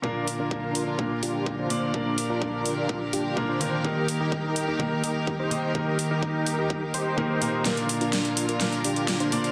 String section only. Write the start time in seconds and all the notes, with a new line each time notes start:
0.04 D3 A#3 F4 A#4
1.94 G4
3.85 D#3
7.65 D3 A#3 F4 A#4